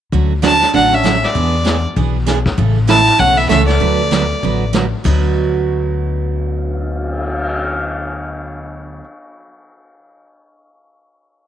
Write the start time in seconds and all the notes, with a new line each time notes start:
0.12 D2 D3 F#3 A3 C#4 F#4, brush sweep, kick
0.42 D3 F#3 A3 C#4 D4 F#4 A5, snare, hi-hat pedal
0.62 snare
0.74 A1 D3 F#3 A3 C#4 D4 F#4 F#5, brush sweep, kick
0.92 C#4 E5
1.03 D3 F#3 A3 C#4 F#4, snare, hi-hat pedal
1.23 G#3 D5, snare
1.35 E2 E3 B3 D4 G#4, brush sweep, kick
1.64 E3 B3 D4 G#4, snare, hi-hat pedal
1.96 B1 E3 B3 D4 G#4, brush sweep, kick
2.26 E3 B3 D4 G#4, snare, hi-hat pedal
2.46 kick, snare
2.58 A1 C#3 E3 A3 C#4 A4, brush sweep, kick
2.87 C#3 E3 A3 C#4 E4 A4 A5, snare, hi-hat pedal
3.07 snare
3.19 B1 C#3 E3 A3 C#4 A4 F#5, brush sweep, kick
3.36 B3 E5
3.49 C#2 C#3 E3 A3 C#4 A4 E5, snare, hi-hat pedal
3.66 A3 D5, snare
3.80 D2 D3 F#3 B3 F#4 B4, brush sweep, kick
4.11 D3 F#3 B3 F#4 B4, snare, hi-hat pedal
4.43 A1 D3 F#3 B3 F#4 B4, brush sweep, kick
4.73 D3 F#3 B3 F#4 B4, snare, hi-hat pedal
5.04 D2 D3 F#3 B3 F#4 B4, kick, crash
5.24 cymbal swell